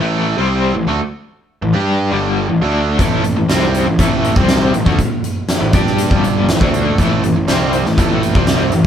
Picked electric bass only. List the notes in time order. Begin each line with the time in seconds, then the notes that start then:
0.01 A1
0.38 C2
0.75 A1
0.87 D2
1.62 A1
1.75 G2
2.11 G1
2.50 A1
2.62 D2
2.99 A1
3.25 A1
3.38 A1
3.50 C2
3.88 A1
3.99 A1
4.36 C2
4.74 A1
4.86 D2
5.61 A1
5.73 G2
6.11 G1
6.49 A1
6.61 D2
6.99 A1
7.24 A1
7.37 A1
7.48 C2
7.87 A1
7.98 A1
8.35 C2
8.73 A1